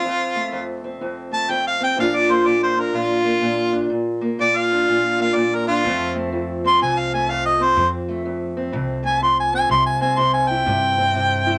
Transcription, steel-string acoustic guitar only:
Already playing: C4
0.05 F2
0.36 A3
0.52 F2
0.84 C4
1.01 F2
1.31 A3
1.49 F2
1.81 C4
1.97 A#2 F3 A#3 D4 F4
2.29 A#3
2.45 A#2
2.76 D4
2.93 A#2
3.24 A#3
3.41 A#2
3.73 D4
3.90 A#2
4.21 A#3
4.39 A#2
4.72 D4
4.88 A#2
5.19 A#3
5.35 A#2
5.68 D4
5.84 F2 F3 A3 C4
6.15 A3
6.32 F2
6.64 C4
6.82 F2
7.14 A3
7.29 F2
7.60 C4
7.78 F2
8.09 A3
8.25 F2
8.57 C4
8.72 F2
9.03 A3
9.21 F2
9.53 C4
9.70 C3
10.01 C4
10.18 C3
10.51 E4
10.66 C3
10.98 C4
11.15 C3
11.46 E4

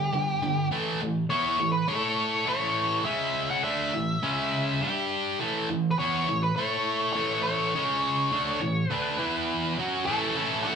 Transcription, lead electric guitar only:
Already playing: G4
1.30 C#5
1.72 B4
1.88 C#5
2.49 C#5
3.05 E5
3.51 F#5
3.64 E5
5.91 B4
5.99 C#5
6.43 B4
6.56 C#5
7.13 C#5
7.43 C#5
8.91 B4
10.05 A4
10.63 F#5

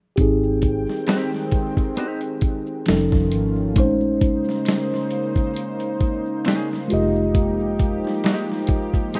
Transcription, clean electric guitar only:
1.08 C4 D#4 G4
1.97 C4 D#4 G4
6.46 C#4 D#4 G#4
8.24 G#3 D#4 G4
9.15 G#3 D#4

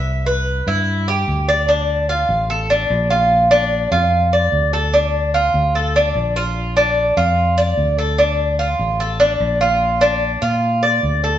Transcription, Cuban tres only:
Already playing: E5
0.26 B4
0.68 E4
1.08 G4
1.49 D5
1.69 D4
2.09 F4
2.50 A4
2.70 D4
3.10 F4
3.51 D4
3.92 F4
4.33 D5
4.73 A4
4.94 D4
5.34 F4
5.75 A4
5.96 D4
6.36 F4
6.77 D4
7.17 F4
7.58 D5
7.98 A4
8.18 D4
8.59 F4
9.00 A4
9.20 D4
9.61 F4
10.01 D4
10.42 F4
10.83 D5
11.24 A4

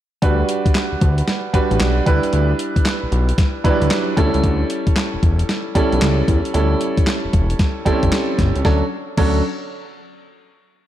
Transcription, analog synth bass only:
0.22 D2
0.66 D2
0.92 D2
1.02 D2
1.54 A1
1.71 A1
1.80 B1
2.07 D2
2.33 D2
2.76 B1
3.03 B1
3.12 B1
3.65 D2
3.82 D2
4.17 D2
4.35 C#2
4.44 D2
4.87 E1
5.14 E1
5.23 E1
5.75 B1
5.93 B1
6.02 C#2
6.28 E2
6.55 D2
6.97 E1
7.24 E1
7.33 E1
7.86 G1
8.03 G1
8.39 G1
8.56 C#2
8.65 D2
9.18 D2

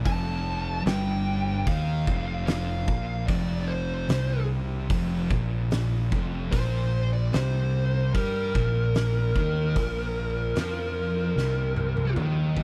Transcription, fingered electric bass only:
0.06 F1
0.86 G1
1.67 D#2
2.08 F1
2.88 A#1
3.28 F1
4.09 C2
4.90 F1
5.31 A#1
6.12 F1
6.53 A#1
7.35 C2
8.15 G2
8.55 A#1
9.36 D#2
9.76 A#1
10.55 F2
11.36 C2
12.17 D#2

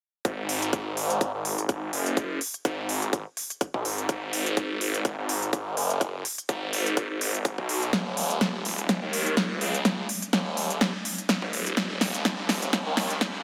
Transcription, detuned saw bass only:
0.25 G#1
0.73 G#1
1.21 G#1
1.34 G#1
1.69 G#1
1.93 F#1
2.65 G#1
3.13 G#1
3.74 B1
3.85 G#1
4.09 G#1
4.57 G#1
5.05 G#1
5.18 G#1
5.53 G#1
5.77 F#1
6.49 G#1
6.97 G#1
7.10 G#1
7.58 B1
7.93 D#1
8.41 D#1
8.89 D#1
9.02 D#2
9.37 D#1
9.61 C#2
10.33 D#1
10.81 D#1
11.42 G#1
11.53 D#1
11.77 D#1
12.25 D#1
12.86 D#2
13.21 D#1

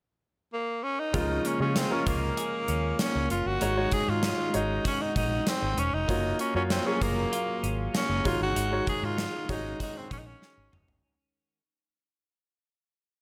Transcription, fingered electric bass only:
1.14 C#2
1.60 C#3
2.07 C#2
2.68 D#2
3.15 C#2
3.31 F#1
3.46 G1
3.62 G#1
4.08 G#2
4.55 G#1
5.16 A#1
5.62 G#1
5.77 E1
5.93 F1
6.09 F#1
6.55 F#2
7.01 F#1
7.63 G#1
8.09 F#1
8.25 G#1
8.40 G1
8.56 G#1
9.02 G#2
9.49 G#1
10.11 A#1
10.57 G#1
10.73 F#1
10.88 G1

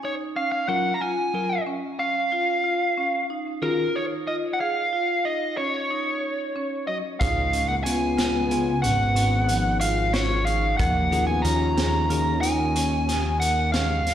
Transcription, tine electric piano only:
0.68 F#3 F4 A#4
1.34 F#3 F4 A#4
3.62 D#3 C#4 F4 F#4 G#4
7.85 C#3 B3 F4
8.50 C#3 B3 F4
11.11 D#3 C#4 F4 F#4 G#4
12.10 D#3 C#4 F4 F#4 G#4

